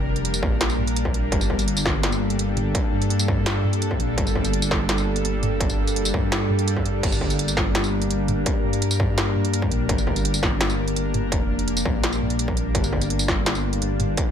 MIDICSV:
0, 0, Header, 1, 5, 480
1, 0, Start_track
1, 0, Key_signature, -2, "minor"
1, 0, Tempo, 357143
1, 1774, Time_signature, 4, 2, 24, 8
1, 19235, End_track
2, 0, Start_track
2, 0, Title_t, "Synth drone"
2, 0, Program_c, 0, 95
2, 0, Note_on_c, 0, 55, 78
2, 0, Note_on_c, 0, 58, 74
2, 0, Note_on_c, 0, 62, 74
2, 0, Note_on_c, 0, 70, 89
2, 1743, Note_off_c, 0, 70, 0
2, 1775, Note_on_c, 0, 69, 89
2, 9425, Note_off_c, 0, 69, 0
2, 9452, Note_on_c, 0, 70, 88
2, 17103, Note_off_c, 0, 70, 0
2, 17131, Note_on_c, 0, 65, 90
2, 19235, Note_off_c, 0, 55, 0
2, 19235, Note_off_c, 0, 58, 0
2, 19235, Note_off_c, 0, 62, 0
2, 19235, Note_off_c, 0, 65, 0
2, 19235, End_track
3, 0, Start_track
3, 0, Title_t, "Detuned saw bass"
3, 0, Program_c, 1, 39
3, 0, Note_on_c, 1, 29, 99
3, 555, Note_off_c, 1, 29, 0
3, 573, Note_on_c, 1, 34, 100
3, 1754, Note_off_c, 1, 34, 0
3, 1774, Note_on_c, 1, 31, 98
3, 3195, Note_off_c, 1, 31, 0
3, 3213, Note_on_c, 1, 31, 96
3, 3674, Note_off_c, 1, 31, 0
3, 3933, Note_on_c, 1, 43, 100
3, 5354, Note_off_c, 1, 43, 0
3, 5375, Note_on_c, 1, 34, 97
3, 5595, Note_off_c, 1, 34, 0
3, 5612, Note_on_c, 1, 31, 99
3, 7034, Note_off_c, 1, 31, 0
3, 7053, Note_on_c, 1, 31, 97
3, 7514, Note_off_c, 1, 31, 0
3, 7532, Note_on_c, 1, 31, 96
3, 8234, Note_off_c, 1, 31, 0
3, 8252, Note_on_c, 1, 43, 99
3, 9434, Note_off_c, 1, 43, 0
3, 9452, Note_on_c, 1, 31, 96
3, 10874, Note_off_c, 1, 31, 0
3, 10893, Note_on_c, 1, 31, 95
3, 11354, Note_off_c, 1, 31, 0
3, 11613, Note_on_c, 1, 43, 102
3, 13034, Note_off_c, 1, 43, 0
3, 13055, Note_on_c, 1, 34, 102
3, 13275, Note_off_c, 1, 34, 0
3, 13294, Note_on_c, 1, 31, 99
3, 14715, Note_off_c, 1, 31, 0
3, 14734, Note_on_c, 1, 31, 95
3, 15195, Note_off_c, 1, 31, 0
3, 15213, Note_on_c, 1, 29, 98
3, 15914, Note_off_c, 1, 29, 0
3, 15933, Note_on_c, 1, 34, 93
3, 17114, Note_off_c, 1, 34, 0
3, 17132, Note_on_c, 1, 31, 98
3, 18554, Note_off_c, 1, 31, 0
3, 18572, Note_on_c, 1, 31, 96
3, 19034, Note_off_c, 1, 31, 0
3, 19235, End_track
4, 0, Start_track
4, 0, Title_t, "Swell"
4, 0, Program_c, 2, 103
4, 8494, Note_on_c, 2, 60, 60
4, 9454, Note_off_c, 2, 60, 0
4, 19235, End_track
5, 0, Start_track
5, 0, Title_t, "Drums"
5, 215, Note_on_c, 9, 42, 37
5, 334, Note_off_c, 9, 42, 0
5, 334, Note_on_c, 9, 42, 66
5, 454, Note_on_c, 9, 54, 65
5, 469, Note_off_c, 9, 42, 0
5, 573, Note_on_c, 9, 36, 111
5, 576, Note_on_c, 9, 45, 35
5, 589, Note_off_c, 9, 54, 0
5, 708, Note_off_c, 9, 36, 0
5, 710, Note_off_c, 9, 45, 0
5, 816, Note_on_c, 9, 38, 122
5, 816, Note_on_c, 9, 42, 75
5, 935, Note_on_c, 9, 54, 34
5, 951, Note_off_c, 9, 38, 0
5, 951, Note_off_c, 9, 42, 0
5, 1055, Note_on_c, 9, 45, 36
5, 1070, Note_off_c, 9, 54, 0
5, 1175, Note_on_c, 9, 42, 38
5, 1190, Note_off_c, 9, 45, 0
5, 1297, Note_off_c, 9, 42, 0
5, 1297, Note_on_c, 9, 42, 69
5, 1413, Note_on_c, 9, 36, 62
5, 1431, Note_off_c, 9, 42, 0
5, 1536, Note_on_c, 9, 42, 37
5, 1548, Note_off_c, 9, 36, 0
5, 1670, Note_off_c, 9, 42, 0
5, 1774, Note_on_c, 9, 36, 123
5, 1775, Note_on_c, 9, 42, 75
5, 1896, Note_on_c, 9, 45, 35
5, 1896, Note_on_c, 9, 54, 38
5, 1908, Note_off_c, 9, 36, 0
5, 1910, Note_off_c, 9, 42, 0
5, 2014, Note_on_c, 9, 36, 60
5, 2030, Note_off_c, 9, 45, 0
5, 2030, Note_off_c, 9, 54, 0
5, 2135, Note_on_c, 9, 42, 34
5, 2135, Note_on_c, 9, 54, 37
5, 2148, Note_off_c, 9, 36, 0
5, 2254, Note_off_c, 9, 42, 0
5, 2254, Note_on_c, 9, 42, 63
5, 2269, Note_off_c, 9, 54, 0
5, 2374, Note_on_c, 9, 54, 67
5, 2389, Note_off_c, 9, 42, 0
5, 2493, Note_on_c, 9, 36, 106
5, 2494, Note_on_c, 9, 38, 64
5, 2508, Note_off_c, 9, 54, 0
5, 2628, Note_off_c, 9, 36, 0
5, 2628, Note_off_c, 9, 38, 0
5, 2734, Note_on_c, 9, 38, 114
5, 2734, Note_on_c, 9, 42, 76
5, 2854, Note_on_c, 9, 54, 36
5, 2868, Note_off_c, 9, 38, 0
5, 2868, Note_off_c, 9, 42, 0
5, 2988, Note_off_c, 9, 54, 0
5, 3093, Note_on_c, 9, 42, 35
5, 3215, Note_off_c, 9, 42, 0
5, 3215, Note_on_c, 9, 42, 64
5, 3349, Note_off_c, 9, 42, 0
5, 3452, Note_on_c, 9, 42, 36
5, 3452, Note_on_c, 9, 45, 53
5, 3587, Note_off_c, 9, 42, 0
5, 3587, Note_off_c, 9, 45, 0
5, 3693, Note_on_c, 9, 36, 120
5, 3694, Note_on_c, 9, 42, 78
5, 3827, Note_off_c, 9, 36, 0
5, 3829, Note_off_c, 9, 42, 0
5, 4054, Note_on_c, 9, 42, 35
5, 4172, Note_off_c, 9, 42, 0
5, 4172, Note_on_c, 9, 42, 61
5, 4293, Note_on_c, 9, 54, 69
5, 4306, Note_off_c, 9, 42, 0
5, 4412, Note_on_c, 9, 36, 101
5, 4413, Note_on_c, 9, 45, 37
5, 4428, Note_off_c, 9, 54, 0
5, 4547, Note_off_c, 9, 36, 0
5, 4548, Note_off_c, 9, 45, 0
5, 4652, Note_on_c, 9, 38, 112
5, 4652, Note_on_c, 9, 42, 76
5, 4786, Note_off_c, 9, 38, 0
5, 4786, Note_off_c, 9, 42, 0
5, 4894, Note_on_c, 9, 45, 38
5, 5014, Note_on_c, 9, 42, 37
5, 5028, Note_off_c, 9, 45, 0
5, 5133, Note_off_c, 9, 42, 0
5, 5133, Note_on_c, 9, 42, 65
5, 5253, Note_on_c, 9, 36, 58
5, 5267, Note_off_c, 9, 42, 0
5, 5373, Note_on_c, 9, 42, 36
5, 5387, Note_off_c, 9, 36, 0
5, 5508, Note_off_c, 9, 42, 0
5, 5613, Note_on_c, 9, 36, 113
5, 5614, Note_on_c, 9, 42, 77
5, 5736, Note_on_c, 9, 45, 39
5, 5736, Note_on_c, 9, 54, 38
5, 5747, Note_off_c, 9, 36, 0
5, 5749, Note_off_c, 9, 42, 0
5, 5853, Note_on_c, 9, 36, 59
5, 5870, Note_off_c, 9, 45, 0
5, 5870, Note_off_c, 9, 54, 0
5, 5974, Note_on_c, 9, 42, 37
5, 5974, Note_on_c, 9, 54, 38
5, 5988, Note_off_c, 9, 36, 0
5, 6094, Note_off_c, 9, 42, 0
5, 6094, Note_on_c, 9, 42, 65
5, 6109, Note_off_c, 9, 54, 0
5, 6212, Note_on_c, 9, 54, 71
5, 6229, Note_off_c, 9, 42, 0
5, 6332, Note_on_c, 9, 38, 60
5, 6333, Note_on_c, 9, 36, 104
5, 6347, Note_off_c, 9, 54, 0
5, 6466, Note_off_c, 9, 38, 0
5, 6467, Note_off_c, 9, 36, 0
5, 6572, Note_on_c, 9, 38, 110
5, 6572, Note_on_c, 9, 42, 76
5, 6692, Note_on_c, 9, 54, 40
5, 6706, Note_off_c, 9, 38, 0
5, 6706, Note_off_c, 9, 42, 0
5, 6827, Note_off_c, 9, 54, 0
5, 6933, Note_on_c, 9, 42, 37
5, 7054, Note_off_c, 9, 42, 0
5, 7054, Note_on_c, 9, 42, 66
5, 7188, Note_off_c, 9, 42, 0
5, 7295, Note_on_c, 9, 42, 37
5, 7295, Note_on_c, 9, 45, 57
5, 7430, Note_off_c, 9, 42, 0
5, 7430, Note_off_c, 9, 45, 0
5, 7533, Note_on_c, 9, 36, 115
5, 7535, Note_on_c, 9, 42, 79
5, 7655, Note_on_c, 9, 45, 39
5, 7655, Note_on_c, 9, 54, 37
5, 7667, Note_off_c, 9, 36, 0
5, 7669, Note_off_c, 9, 42, 0
5, 7789, Note_off_c, 9, 45, 0
5, 7789, Note_off_c, 9, 54, 0
5, 7896, Note_on_c, 9, 42, 39
5, 7896, Note_on_c, 9, 54, 36
5, 8015, Note_off_c, 9, 42, 0
5, 8015, Note_on_c, 9, 42, 66
5, 8030, Note_off_c, 9, 54, 0
5, 8134, Note_on_c, 9, 54, 72
5, 8149, Note_off_c, 9, 42, 0
5, 8252, Note_on_c, 9, 36, 101
5, 8254, Note_on_c, 9, 45, 40
5, 8269, Note_off_c, 9, 54, 0
5, 8386, Note_off_c, 9, 36, 0
5, 8389, Note_off_c, 9, 45, 0
5, 8494, Note_on_c, 9, 38, 112
5, 8494, Note_on_c, 9, 42, 80
5, 8628, Note_off_c, 9, 38, 0
5, 8628, Note_off_c, 9, 42, 0
5, 8735, Note_on_c, 9, 45, 40
5, 8853, Note_on_c, 9, 42, 38
5, 8869, Note_off_c, 9, 45, 0
5, 8973, Note_off_c, 9, 42, 0
5, 8973, Note_on_c, 9, 42, 69
5, 9092, Note_on_c, 9, 36, 56
5, 9107, Note_off_c, 9, 42, 0
5, 9213, Note_on_c, 9, 42, 37
5, 9227, Note_off_c, 9, 36, 0
5, 9348, Note_off_c, 9, 42, 0
5, 9452, Note_on_c, 9, 36, 118
5, 9453, Note_on_c, 9, 42, 82
5, 9453, Note_on_c, 9, 49, 72
5, 9573, Note_on_c, 9, 45, 37
5, 9573, Note_on_c, 9, 54, 36
5, 9586, Note_off_c, 9, 36, 0
5, 9588, Note_off_c, 9, 42, 0
5, 9588, Note_off_c, 9, 49, 0
5, 9692, Note_on_c, 9, 36, 59
5, 9708, Note_off_c, 9, 45, 0
5, 9708, Note_off_c, 9, 54, 0
5, 9814, Note_on_c, 9, 42, 38
5, 9814, Note_on_c, 9, 54, 36
5, 9826, Note_off_c, 9, 36, 0
5, 9934, Note_off_c, 9, 42, 0
5, 9934, Note_on_c, 9, 42, 68
5, 9949, Note_off_c, 9, 54, 0
5, 10054, Note_on_c, 9, 54, 67
5, 10069, Note_off_c, 9, 42, 0
5, 10172, Note_on_c, 9, 36, 103
5, 10174, Note_on_c, 9, 38, 62
5, 10188, Note_off_c, 9, 54, 0
5, 10306, Note_off_c, 9, 36, 0
5, 10308, Note_off_c, 9, 38, 0
5, 10415, Note_on_c, 9, 38, 119
5, 10415, Note_on_c, 9, 42, 82
5, 10534, Note_on_c, 9, 54, 37
5, 10550, Note_off_c, 9, 38, 0
5, 10550, Note_off_c, 9, 42, 0
5, 10668, Note_off_c, 9, 54, 0
5, 10773, Note_on_c, 9, 42, 39
5, 10894, Note_off_c, 9, 42, 0
5, 10894, Note_on_c, 9, 42, 69
5, 11028, Note_off_c, 9, 42, 0
5, 11133, Note_on_c, 9, 42, 39
5, 11133, Note_on_c, 9, 45, 57
5, 11267, Note_off_c, 9, 42, 0
5, 11267, Note_off_c, 9, 45, 0
5, 11371, Note_on_c, 9, 42, 86
5, 11373, Note_on_c, 9, 36, 123
5, 11506, Note_off_c, 9, 42, 0
5, 11507, Note_off_c, 9, 36, 0
5, 11734, Note_on_c, 9, 42, 38
5, 11853, Note_off_c, 9, 42, 0
5, 11853, Note_on_c, 9, 42, 70
5, 11972, Note_on_c, 9, 54, 65
5, 11988, Note_off_c, 9, 42, 0
5, 12092, Note_on_c, 9, 45, 38
5, 12093, Note_on_c, 9, 36, 107
5, 12107, Note_off_c, 9, 54, 0
5, 12227, Note_off_c, 9, 45, 0
5, 12228, Note_off_c, 9, 36, 0
5, 12334, Note_on_c, 9, 38, 127
5, 12334, Note_on_c, 9, 42, 79
5, 12468, Note_off_c, 9, 38, 0
5, 12468, Note_off_c, 9, 42, 0
5, 12574, Note_on_c, 9, 45, 39
5, 12696, Note_on_c, 9, 42, 39
5, 12709, Note_off_c, 9, 45, 0
5, 12815, Note_off_c, 9, 42, 0
5, 12815, Note_on_c, 9, 42, 73
5, 12933, Note_on_c, 9, 36, 66
5, 12950, Note_off_c, 9, 42, 0
5, 13057, Note_on_c, 9, 42, 39
5, 13068, Note_off_c, 9, 36, 0
5, 13191, Note_off_c, 9, 42, 0
5, 13294, Note_on_c, 9, 36, 127
5, 13296, Note_on_c, 9, 42, 78
5, 13417, Note_on_c, 9, 45, 35
5, 13417, Note_on_c, 9, 54, 34
5, 13428, Note_off_c, 9, 36, 0
5, 13430, Note_off_c, 9, 42, 0
5, 13534, Note_on_c, 9, 36, 63
5, 13552, Note_off_c, 9, 45, 0
5, 13552, Note_off_c, 9, 54, 0
5, 13657, Note_on_c, 9, 42, 38
5, 13657, Note_on_c, 9, 54, 34
5, 13669, Note_off_c, 9, 36, 0
5, 13776, Note_off_c, 9, 42, 0
5, 13776, Note_on_c, 9, 42, 69
5, 13792, Note_off_c, 9, 54, 0
5, 13896, Note_on_c, 9, 54, 64
5, 13911, Note_off_c, 9, 42, 0
5, 14014, Note_on_c, 9, 36, 115
5, 14016, Note_on_c, 9, 38, 65
5, 14030, Note_off_c, 9, 54, 0
5, 14148, Note_off_c, 9, 36, 0
5, 14150, Note_off_c, 9, 38, 0
5, 14255, Note_on_c, 9, 38, 127
5, 14255, Note_on_c, 9, 42, 79
5, 14376, Note_on_c, 9, 54, 35
5, 14389, Note_off_c, 9, 38, 0
5, 14389, Note_off_c, 9, 42, 0
5, 14511, Note_off_c, 9, 54, 0
5, 14617, Note_on_c, 9, 42, 39
5, 14736, Note_off_c, 9, 42, 0
5, 14736, Note_on_c, 9, 42, 66
5, 14871, Note_off_c, 9, 42, 0
5, 14975, Note_on_c, 9, 42, 40
5, 14975, Note_on_c, 9, 45, 54
5, 15110, Note_off_c, 9, 42, 0
5, 15110, Note_off_c, 9, 45, 0
5, 15213, Note_on_c, 9, 36, 122
5, 15216, Note_on_c, 9, 42, 78
5, 15347, Note_off_c, 9, 36, 0
5, 15351, Note_off_c, 9, 42, 0
5, 15576, Note_on_c, 9, 42, 37
5, 15693, Note_off_c, 9, 42, 0
5, 15693, Note_on_c, 9, 42, 65
5, 15815, Note_on_c, 9, 54, 66
5, 15828, Note_off_c, 9, 42, 0
5, 15932, Note_on_c, 9, 36, 108
5, 15936, Note_on_c, 9, 45, 37
5, 15949, Note_off_c, 9, 54, 0
5, 16067, Note_off_c, 9, 36, 0
5, 16070, Note_off_c, 9, 45, 0
5, 16175, Note_on_c, 9, 38, 122
5, 16175, Note_on_c, 9, 42, 77
5, 16296, Note_on_c, 9, 54, 35
5, 16310, Note_off_c, 9, 38, 0
5, 16310, Note_off_c, 9, 42, 0
5, 16416, Note_on_c, 9, 45, 35
5, 16430, Note_off_c, 9, 54, 0
5, 16534, Note_on_c, 9, 42, 37
5, 16550, Note_off_c, 9, 45, 0
5, 16654, Note_off_c, 9, 42, 0
5, 16654, Note_on_c, 9, 42, 66
5, 16773, Note_on_c, 9, 36, 64
5, 16789, Note_off_c, 9, 42, 0
5, 16893, Note_on_c, 9, 42, 38
5, 16907, Note_off_c, 9, 36, 0
5, 17028, Note_off_c, 9, 42, 0
5, 17132, Note_on_c, 9, 36, 122
5, 17134, Note_on_c, 9, 42, 72
5, 17254, Note_on_c, 9, 45, 37
5, 17254, Note_on_c, 9, 54, 38
5, 17267, Note_off_c, 9, 36, 0
5, 17268, Note_off_c, 9, 42, 0
5, 17373, Note_on_c, 9, 36, 62
5, 17389, Note_off_c, 9, 45, 0
5, 17389, Note_off_c, 9, 54, 0
5, 17492, Note_on_c, 9, 42, 35
5, 17492, Note_on_c, 9, 54, 35
5, 17507, Note_off_c, 9, 36, 0
5, 17610, Note_off_c, 9, 42, 0
5, 17610, Note_on_c, 9, 42, 62
5, 17626, Note_off_c, 9, 54, 0
5, 17732, Note_on_c, 9, 54, 65
5, 17745, Note_off_c, 9, 42, 0
5, 17852, Note_on_c, 9, 36, 105
5, 17854, Note_on_c, 9, 38, 64
5, 17866, Note_off_c, 9, 54, 0
5, 17987, Note_off_c, 9, 36, 0
5, 17988, Note_off_c, 9, 38, 0
5, 18094, Note_on_c, 9, 38, 119
5, 18094, Note_on_c, 9, 42, 73
5, 18212, Note_on_c, 9, 54, 36
5, 18229, Note_off_c, 9, 38, 0
5, 18229, Note_off_c, 9, 42, 0
5, 18347, Note_off_c, 9, 54, 0
5, 18451, Note_on_c, 9, 42, 36
5, 18572, Note_off_c, 9, 42, 0
5, 18572, Note_on_c, 9, 42, 65
5, 18706, Note_off_c, 9, 42, 0
5, 18812, Note_on_c, 9, 42, 37
5, 18812, Note_on_c, 9, 45, 50
5, 18946, Note_off_c, 9, 42, 0
5, 18946, Note_off_c, 9, 45, 0
5, 19050, Note_on_c, 9, 42, 73
5, 19052, Note_on_c, 9, 36, 115
5, 19185, Note_off_c, 9, 42, 0
5, 19186, Note_off_c, 9, 36, 0
5, 19235, End_track
0, 0, End_of_file